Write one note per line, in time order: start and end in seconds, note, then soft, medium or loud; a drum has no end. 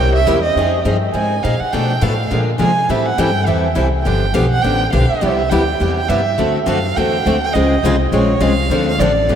0.00 0.26 C2 medium
0.00 0.17 C3 medium
0.00 0.17 G3 medium
0.00 0.17 A#3 medium
0.00 0.17 E4 medium
0.00 0.18 G4 medium
0.00 0.14 G5 loud
0.15 0.43 E5 medium
0.26 0.55 E2 loud
0.26 0.37 C3 medium
0.26 0.38 G3 medium
0.26 0.38 A#3 medium
0.26 0.38 E4 medium
0.26 0.38 G4 medium
0.43 0.82 D#5 medium
0.56 0.84 F2 medium
0.56 0.75 F3 medium
0.56 0.76 C4 medium
0.56 0.76 D#4 medium
0.56 0.76 G#4 medium
0.84 1.13 G2 medium
0.84 0.96 F3 medium
0.84 0.96 C4 medium
0.84 0.96 D#4 medium
0.84 0.96 G#4 medium
1.14 1.43 G#2 medium
1.14 1.34 F3 medium
1.14 1.34 C4 medium
1.14 1.34 D#4 medium
1.14 1.34 G#4 medium
1.14 1.45 G#5 medium
1.43 1.60 A#2 medium
1.43 1.54 F3 medium
1.43 1.54 C4 medium
1.43 1.54 D#4 medium
1.43 1.54 G#4 medium
1.43 1.61 F5 medium
1.60 1.74 F#5 medium
1.60 muted upright bass stroke soft
1.73 2.01 B2 medium
1.73 1.92 B2 medium
1.73 1.92 F3 medium
1.73 1.93 A3 medium
1.73 1.93 D4 medium
1.73 1.93 A4 medium
1.73 1.93 B4 medium
1.73 2.04 G5 medium
2.02 2.30 A2 medium
2.02 2.13 B2 medium
2.02 2.13 F3 medium
2.02 2.13 A3 medium
2.02 2.13 D4 medium
2.02 2.13 A4 loud
2.02 2.13 B4 medium
2.02 2.31 F5 medium
2.31 2.59 A#2 medium
2.31 2.50 D3 medium
2.31 2.50 F3 medium
2.31 2.51 G#3 medium
2.31 2.50 A#3 medium
2.31 2.51 D4 medium
2.31 2.51 F4 medium
2.31 2.50 G#4 medium
2.31 2.51 A#4 medium
2.58 2.88 C3 medium
2.58 2.70 D3 medium
2.58 2.71 F3 medium
2.58 2.71 G#3 medium
2.58 2.70 A#3 medium
2.58 2.71 D4 medium
2.58 2.71 F4 medium
2.58 2.70 G#4 medium
2.58 2.71 A#4 medium
2.58 2.92 G#5 medium
2.89 3.17 A2 medium
2.89 3.08 E3 medium
2.89 3.09 G3 medium
2.89 3.09 C4 medium
2.89 3.09 E4 medium
2.89 3.09 A4 medium
2.89 3.07 E5 medium
3.06 3.20 F#5 medium
3.18 3.46 G2 medium
3.18 3.29 E3 medium
3.18 3.29 G3 medium
3.18 3.29 C4 medium
3.18 3.29 E4 medium
3.18 3.29 A4 loud
3.18 3.48 G5 loud
3.47 3.76 E2 medium
3.47 3.66 E3 medium
3.47 3.67 G3 medium
3.47 3.67 C4 medium
3.47 3.67 E4 medium
3.47 3.67 A4 medium
3.47 3.76 E5 medium
3.76 4.04 C2 medium
3.76 3.87 E3 medium
3.76 3.87 G3 medium
3.76 3.87 C4 medium
3.76 3.88 E4 medium
3.76 3.88 A4 medium
4.04 4.34 G1 medium
4.04 4.25 D3 medium
4.04 4.25 F3 medium
4.04 4.25 B3 medium
4.04 4.25 D4 medium
4.04 4.25 G4 medium
4.04 4.36 G5 medium
4.34 4.63 B1 medium
4.34 4.45 D3 medium
4.34 4.45 F3 loud
4.34 4.45 B3 loud
4.34 4.46 D4 medium
4.34 4.46 G4 medium
4.34 4.50 F5 medium
4.51 4.63 F#5 medium
4.62 4.92 A1 medium
4.62 4.83 D3 medium
4.62 4.83 F3 medium
4.62 4.83 B3 medium
4.62 4.83 D4 medium
4.62 4.84 G4 medium
4.62 4.92 G5 medium
4.92 5.09 B1 medium
4.92 5.03 D3 medium
4.92 5.03 F3 medium
4.92 5.04 B3 medium
4.92 5.04 D4 medium
4.92 5.04 G4 medium
4.92 5.20 F5 medium
5.21 5.50 C2 medium
5.21 5.41 C3 medium
5.21 5.41 G3 medium
5.21 5.41 B3 medium
5.21 5.42 E4 medium
5.21 5.41 G4 medium
5.21 5.51 E5 medium
5.50 5.80 D2 medium
5.50 5.61 C3 medium
5.50 5.62 G3 medium
5.50 5.62 B3 medium
5.50 5.62 E4 loud
5.50 5.62 G4 medium
5.50 5.96 G5 medium
5.80 6.09 E2 medium
5.80 5.99 C3 medium
5.80 6.00 G3 medium
5.80 6.00 B3 medium
5.80 6.00 E4 medium
5.80 6.00 G4 medium
5.97 6.10 G5 medium
6.08 6.37 G2 medium
6.08 6.19 C3 medium
6.08 6.19 G3 medium
6.08 6.20 B3 medium
6.08 6.20 E4 medium
6.08 6.20 G4 medium
6.08 6.55 E5 medium
6.38 6.66 D2 medium
6.38 6.57 D3 medium
6.38 6.57 A3 medium
6.38 6.57 C4 medium
6.38 6.58 F#4 medium
6.38 6.58 A4 medium
6.67 6.95 F#2 medium
6.67 6.78 D3 medium
6.67 6.78 A3 loud
6.67 6.78 C4 loud
6.67 6.78 F#4 loud
6.67 6.78 A4 medium
6.67 6.98 F5 medium
6.97 7.25 E2 medium
6.97 7.16 D3 medium
6.97 7.16 A3 medium
6.97 7.16 C4 medium
6.97 7.17 F#4 medium
6.97 7.17 A4 medium
6.97 7.43 G5 medium
7.25 7.54 D2 medium
7.25 7.36 D3 medium
7.25 7.36 A3 medium
7.25 7.36 C4 medium
7.25 7.36 F#4 medium
7.25 7.36 A4 medium
7.43 7.55 G5 medium
7.53 7.82 C#2 medium
7.53 7.74 C#3 medium
7.53 7.74 G#3 medium
7.53 7.74 C4 medium
7.53 7.74 F4 medium
7.53 7.75 G#4 medium
7.53 8.00 D#5 medium
7.83 8.11 C2 medium
7.83 7.94 C#3 medium
7.83 7.94 G#3 loud
7.83 7.94 C4 medium
7.83 7.94 F4 loud
7.83 7.95 G#4 loud
8.12 8.40 A#1 medium
8.12 8.31 C#3 medium
8.12 8.32 G#3 medium
8.12 8.32 C4 medium
8.12 8.32 F4 medium
8.12 8.32 G#4 medium
8.12 8.43 C#5 medium
8.40 8.69 C2 medium
8.40 8.52 C#3 medium
8.40 8.52 G#3 medium
8.40 8.53 C4 medium
8.40 8.53 F4 medium
8.40 8.53 G#4 medium
8.40 8.87 F5 loud
8.70 8.98 D2 medium
8.70 8.89 D3 medium
8.70 8.90 F3 medium
8.70 8.90 C4 medium
8.70 8.90 D4 medium
8.70 8.90 A4 medium
8.88 9.01 F5 loud
8.98 9.27 A1 medium
8.98 9.11 D3 medium
8.98 9.11 F3 medium
8.98 9.11 C4 medium
8.98 9.11 D4 loud
8.98 9.11 A4 loud
8.98 9.35 D5 medium
9.28 9.35 G1 medium
9.28 9.35 D3 medium
9.28 9.35 F3 medium
9.28 9.35 B3 medium
9.28 9.35 D4 medium
9.28 9.35 G4 medium